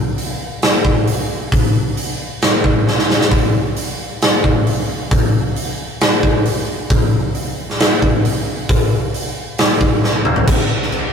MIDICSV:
0, 0, Header, 1, 2, 480
1, 0, Start_track
1, 0, Tempo, 448096
1, 1629, Time_signature, 4, 2, 24, 8
1, 11920, End_track
2, 0, Start_track
2, 0, Title_t, "Drums"
2, 190, Note_on_c, 9, 46, 50
2, 297, Note_off_c, 9, 46, 0
2, 665, Note_on_c, 9, 46, 53
2, 676, Note_on_c, 9, 38, 103
2, 772, Note_off_c, 9, 46, 0
2, 783, Note_off_c, 9, 38, 0
2, 906, Note_on_c, 9, 36, 88
2, 1014, Note_off_c, 9, 36, 0
2, 1148, Note_on_c, 9, 46, 61
2, 1255, Note_off_c, 9, 46, 0
2, 1630, Note_on_c, 9, 36, 105
2, 1632, Note_on_c, 9, 46, 60
2, 1737, Note_off_c, 9, 36, 0
2, 1739, Note_off_c, 9, 46, 0
2, 2110, Note_on_c, 9, 46, 58
2, 2218, Note_off_c, 9, 46, 0
2, 2589, Note_on_c, 9, 46, 49
2, 2599, Note_on_c, 9, 38, 101
2, 2696, Note_off_c, 9, 46, 0
2, 2706, Note_off_c, 9, 38, 0
2, 2830, Note_on_c, 9, 36, 82
2, 2937, Note_off_c, 9, 36, 0
2, 3079, Note_on_c, 9, 38, 55
2, 3186, Note_off_c, 9, 38, 0
2, 3198, Note_on_c, 9, 38, 63
2, 3305, Note_off_c, 9, 38, 0
2, 3324, Note_on_c, 9, 38, 80
2, 3431, Note_off_c, 9, 38, 0
2, 3441, Note_on_c, 9, 38, 92
2, 3547, Note_on_c, 9, 46, 52
2, 3548, Note_off_c, 9, 38, 0
2, 3551, Note_on_c, 9, 36, 95
2, 3654, Note_off_c, 9, 46, 0
2, 3658, Note_off_c, 9, 36, 0
2, 4031, Note_on_c, 9, 46, 53
2, 4138, Note_off_c, 9, 46, 0
2, 4516, Note_on_c, 9, 46, 52
2, 4526, Note_on_c, 9, 38, 98
2, 4623, Note_off_c, 9, 46, 0
2, 4633, Note_off_c, 9, 38, 0
2, 4756, Note_on_c, 9, 36, 87
2, 4863, Note_off_c, 9, 36, 0
2, 4998, Note_on_c, 9, 46, 60
2, 5105, Note_off_c, 9, 46, 0
2, 5477, Note_on_c, 9, 36, 113
2, 5479, Note_on_c, 9, 46, 54
2, 5584, Note_off_c, 9, 36, 0
2, 5586, Note_off_c, 9, 46, 0
2, 5957, Note_on_c, 9, 46, 57
2, 6064, Note_off_c, 9, 46, 0
2, 6434, Note_on_c, 9, 46, 55
2, 6444, Note_on_c, 9, 38, 103
2, 6541, Note_off_c, 9, 46, 0
2, 6551, Note_off_c, 9, 38, 0
2, 6675, Note_on_c, 9, 36, 84
2, 6782, Note_off_c, 9, 36, 0
2, 6913, Note_on_c, 9, 46, 59
2, 7020, Note_off_c, 9, 46, 0
2, 7391, Note_on_c, 9, 46, 54
2, 7394, Note_on_c, 9, 36, 112
2, 7498, Note_off_c, 9, 46, 0
2, 7501, Note_off_c, 9, 36, 0
2, 7869, Note_on_c, 9, 46, 47
2, 7976, Note_off_c, 9, 46, 0
2, 8245, Note_on_c, 9, 38, 35
2, 8352, Note_on_c, 9, 46, 53
2, 8353, Note_off_c, 9, 38, 0
2, 8362, Note_on_c, 9, 38, 112
2, 8459, Note_off_c, 9, 46, 0
2, 8470, Note_off_c, 9, 38, 0
2, 8595, Note_on_c, 9, 36, 87
2, 8702, Note_off_c, 9, 36, 0
2, 8835, Note_on_c, 9, 46, 58
2, 8942, Note_off_c, 9, 46, 0
2, 9311, Note_on_c, 9, 46, 57
2, 9312, Note_on_c, 9, 36, 112
2, 9418, Note_off_c, 9, 46, 0
2, 9419, Note_off_c, 9, 36, 0
2, 9791, Note_on_c, 9, 46, 54
2, 9898, Note_off_c, 9, 46, 0
2, 10264, Note_on_c, 9, 46, 59
2, 10275, Note_on_c, 9, 38, 102
2, 10371, Note_off_c, 9, 46, 0
2, 10382, Note_off_c, 9, 38, 0
2, 10506, Note_on_c, 9, 36, 88
2, 10613, Note_off_c, 9, 36, 0
2, 10754, Note_on_c, 9, 38, 58
2, 10861, Note_off_c, 9, 38, 0
2, 10981, Note_on_c, 9, 45, 87
2, 11088, Note_off_c, 9, 45, 0
2, 11099, Note_on_c, 9, 43, 84
2, 11206, Note_off_c, 9, 43, 0
2, 11221, Note_on_c, 9, 49, 118
2, 11221, Note_on_c, 9, 57, 60
2, 11222, Note_on_c, 9, 36, 110
2, 11328, Note_off_c, 9, 49, 0
2, 11328, Note_off_c, 9, 57, 0
2, 11329, Note_off_c, 9, 36, 0
2, 11594, Note_on_c, 9, 38, 31
2, 11700, Note_on_c, 9, 57, 55
2, 11702, Note_off_c, 9, 38, 0
2, 11807, Note_off_c, 9, 57, 0
2, 11920, End_track
0, 0, End_of_file